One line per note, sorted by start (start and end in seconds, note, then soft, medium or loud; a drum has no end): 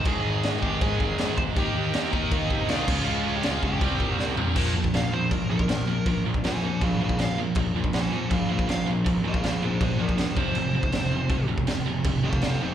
0.05 0.19 G#1 loud
0.05 0.61 G#2 medium
0.05 0.61 D#3 loud
0.05 0.60 G#3 loud
0.05 0.58 G#4 medium
0.05 0.62 G#5 medium
0.05 kick loud
0.05 crash medium
0.24 0.37 G#1 medium
0.43 0.57 G#1 medium
0.43 snare loud
0.43 crash medium
0.61 0.76 G#1 medium
0.61 1.16 G#2 medium
0.61 1.18 D#3 medium
0.61 1.17 G#3 medium
0.61 0.79 G4 medium
0.61 0.81 G5 medium
0.61 kick medium
0.81 0.95 G#2 medium
0.81 1.33 G#4 medium
0.81 1.34 G#5 medium
0.81 kick loud
0.81 crash medium
1.00 1.14 F2 medium
1.00 kick medium
1.17 1.32 G#1 medium
1.17 1.54 G#2 medium
1.17 1.54 D#3 medium
1.17 1.56 G#3 medium
1.17 snare loud
1.17 crash medium
1.37 1.51 F1 medium
1.37 1.42 C5 medium
1.37 1.42 C6 loud
1.37 kick loud
1.55 1.70 D#2 medium
1.55 2.11 D#3 medium
1.55 2.12 A#3 medium
1.55 2.11 D#4 medium
1.55 2.09 G4 medium
1.55 2.15 G5 medium
1.55 kick loud
1.55 crash medium
1.75 1.88 D#2 loud
1.93 2.07 D#2 medium
1.93 snare loud
1.93 crash medium
2.12 2.26 D#2 medium
2.12 2.66 D#3 medium
2.12 2.68 A#3 medium
2.12 2.67 D#4 medium
2.12 2.64 D#4 medium
2.12 2.71 D#5 medium
2.12 kick medium
2.31 2.45 D#3 medium
2.31 kick loud
2.31 crash medium
2.50 2.64 C3 loud
2.50 kick medium
2.68 2.82 C2 loud
2.68 2.86 D#3 medium
2.68 2.87 A#3 medium
2.68 2.87 D#4 medium
2.68 3.04 F4 medium
2.68 3.07 F5 medium
2.68 snare loud
2.68 crash medium
2.86 3.01 C#2 medium
2.86 3.42 C#3 medium
2.86 3.43 G#3 medium
2.86 3.43 C#4 loud
2.86 kick loud
2.86 crash loud
3.06 3.20 C#2 loud
3.06 3.33 F4 medium
3.06 3.36 F5 medium
3.06 crash medium
3.26 3.39 C#2 medium
3.36 3.44 G4 medium
3.36 3.46 G5 loud
3.43 3.58 C#2 medium
3.43 3.79 C#3 medium
3.43 3.81 G#3 medium
3.43 3.82 C#4 medium
3.43 3.62 F4 medium
3.43 3.64 F5 medium
3.43 snare loud
3.43 crash medium
3.62 3.76 C#2 medium
3.62 4.34 G4 medium
3.62 4.16 G5 loud
3.62 kick medium
3.80 3.94 C2 loud
3.80 4.36 C3 medium
3.80 4.37 G3 medium
3.80 4.36 C4 loud
3.80 kick loud
3.80 crash medium
4.00 4.13 A#2 medium
4.00 kick medium
4.16 4.32 C2 medium
4.16 4.35 F5 loud
4.16 snare medium
4.37 4.50 A#1 medium
4.37 4.56 C3 medium
4.37 4.56 G3 medium
4.37 4.55 C4 medium
4.37 floor tom loud
4.56 4.72 A#1 medium
4.56 4.74 A#2 medium
4.56 4.74 F3 medium
4.56 4.74 A#3 medium
4.56 kick loud
4.56 crash loud
4.56 crash medium
4.75 4.91 A#1 medium
4.75 4.92 A#2 medium
4.75 4.92 F3 medium
4.84 kick medium
4.94 5.10 A#1 medium
4.94 5.11 A#2 medium
4.94 5.11 F3 medium
4.94 5.13 F5 loud
4.94 snare loud
4.94 crash medium
5.11 5.28 A#1 medium
5.11 5.30 A#2 medium
5.11 5.30 F3 medium
5.11 5.31 C5 medium
5.31 5.47 A#1 loud
5.31 5.48 A#2 medium
5.31 5.49 F3 medium
5.31 5.49 A#4 medium
5.31 kick loud
5.31 crash medium
5.50 5.66 A#1 medium
5.50 5.67 A#2 medium
5.50 5.67 F3 medium
5.50 6.23 A#4 loud
5.59 kick medium
5.68 5.85 A#1 medium
5.68 5.86 A#2 medium
5.68 5.86 F3 medium
5.68 snare loud
5.68 crash medium
5.86 6.03 A#1 medium
5.86 6.04 A#2 medium
5.86 6.04 F3 medium
6.06 6.22 A#1 medium
6.06 6.23 A#2 medium
6.06 6.23 F3 medium
6.06 kick loud
6.06 crash medium
6.24 6.41 A#1 medium
6.24 6.41 A#2 medium
6.24 6.42 F3 medium
6.34 kick medium
6.43 6.59 A#1 medium
6.43 6.61 A#2 medium
6.43 6.61 F3 medium
6.43 6.63 C5 medium
6.43 snare loud
6.43 crash medium
6.48 6.63 G#5 medium
6.61 6.77 A#1 medium
6.61 6.79 A#2 medium
6.61 6.80 F3 medium
6.61 6.81 C5 medium
6.61 6.81 G#5 medium
6.81 6.98 A#1 loud
6.81 6.98 A#2 medium
6.81 6.98 F3 medium
6.81 6.99 G#4 medium
6.81 7.00 F5 medium
6.81 kick loud
6.81 crash medium
6.99 7.15 A#1 medium
6.99 7.17 A#2 medium
6.99 7.17 F3 loud
7.04 7.19 G#4 medium
7.04 7.20 F5 medium
7.09 kick medium
7.18 7.34 A#1 loud
7.18 7.35 A#2 medium
7.18 7.35 F3 medium
7.18 7.38 F5 loud
7.18 snare loud
7.18 crash medium
7.36 7.53 A#1 medium
7.36 7.54 A#2 medium
7.36 7.55 F3 medium
7.55 7.72 A#1 medium
7.55 7.73 A#2 medium
7.55 7.73 F3 medium
7.55 kick loud
7.55 crash medium
7.75 7.91 A#1 medium
7.75 7.92 A#2 medium
7.75 7.92 F3 loud
7.84 kick medium
7.93 8.09 A#1 medium
7.93 8.10 A#2 medium
7.93 8.11 F3 loud
7.93 8.11 C5 loud
7.93 8.11 G#5 loud
7.93 snare loud
7.93 crash medium
8.12 8.29 A#1 medium
8.12 8.29 A#2 medium
8.12 8.29 F3 medium
8.12 8.29 C5 medium
8.12 8.30 G#5 medium
8.31 8.47 A#1 loud
8.31 8.48 A#2 medium
8.31 8.48 F3 medium
8.31 8.49 G#4 medium
8.31 8.50 F5 medium
8.31 kick loud
8.31 crash medium
8.50 8.66 A#1 medium
8.50 8.66 A#2 medium
8.50 8.66 F3 medium
8.50 8.69 G#4 medium
8.50 8.68 F5 medium
8.59 kick medium
8.67 8.84 A#1 medium
8.67 8.85 A#2 medium
8.67 8.85 F3 medium
8.67 8.87 F5 loud
8.67 snare loud
8.67 crash medium
8.87 9.03 A#1 medium
8.87 9.04 A#2 medium
8.87 9.04 F3 medium
9.06 9.22 A#1 medium
9.06 9.23 A#2 medium
9.06 9.23 F3 medium
9.06 kick loud
9.06 crash medium
9.23 9.40 A#1 medium
9.23 9.41 A#2 medium
9.23 9.41 F3 medium
9.27 9.45 G#4 medium
9.27 9.44 F5 loud
9.34 kick medium
9.42 9.59 A#1 medium
9.42 9.60 A#2 medium
9.42 9.60 F3 medium
9.42 9.62 G#4 medium
9.42 snare loud
9.42 crash medium
9.48 9.64 F5 loud
9.61 9.78 A#1 medium
9.61 9.79 A#2 medium
9.61 9.79 F3 medium
9.61 9.81 G#4 medium
9.65 9.82 C5 medium
9.80 9.97 A#1 medium
9.80 9.97 A#2 medium
9.80 9.97 F3 medium
9.80 10.00 G#4 medium
9.80 kick loud
9.80 crash medium
9.84 10.01 C5 loud
9.98 10.15 A#1 medium
9.98 10.16 A#2 medium
9.98 10.16 F3 medium
9.98 10.18 D4 medium
9.98 10.18 A#4 medium
10.09 kick medium
10.17 10.34 A#1 medium
10.17 10.34 A#2 medium
10.17 10.35 F3 medium
10.17 10.36 D4 medium
10.17 10.37 A#4 medium
10.17 snare loud
10.17 crash medium
10.35 10.53 F1 medium
10.35 10.54 F2 medium
10.35 10.54 C3 medium
10.35 10.54 F3 loud
10.35 11.46 C5 loud
10.35 kick loud
10.54 10.71 F1 loud
10.54 10.72 F2 medium
10.54 10.73 C3 medium
10.54 crash medium
10.73 10.90 F1 medium
10.73 10.91 F2 medium
10.73 10.91 C3 loud
10.83 kick medium
10.92 11.09 F1 medium
10.92 11.10 F2 medium
10.92 11.10 C3 medium
10.92 snare loud
10.92 crash medium
11.10 11.27 F1 medium
11.10 11.28 F2 medium
11.10 11.28 C3 medium
11.29 11.46 F1 loud
11.29 11.47 F2 medium
11.29 11.47 C3 medium
11.29 kick loud
11.29 crash medium
11.48 11.65 F1 medium
11.48 11.66 F2 medium
11.48 11.66 C3 medium
11.58 kick medium
11.67 11.84 F1 medium
11.67 11.84 F2 medium
11.67 11.85 C3 medium
11.67 snare loud
11.67 crash medium
11.86 12.03 F1 medium
11.86 12.03 F2 medium
11.86 12.03 C3 medium
12.04 12.21 F1 medium
12.04 12.22 F2 medium
12.04 12.22 C3 medium
12.04 kick loud
12.04 crash medium
12.23 12.40 F1 medium
12.23 12.41 F2 medium
12.23 12.41 C3 medium
12.23 12.43 A4 medium
12.23 12.43 F5 medium
12.33 kick medium
12.42 12.58 F1 medium
12.42 12.60 F2 medium
12.42 12.60 C3 medium
12.42 12.61 A4 loud
12.42 12.62 F5 loud
12.42 snare loud
12.42 crash medium
12.61 12.74 F1 medium
12.61 12.74 F2 medium
12.61 12.74 C3 medium
12.61 12.74 D#4 medium
12.61 12.74 C5 medium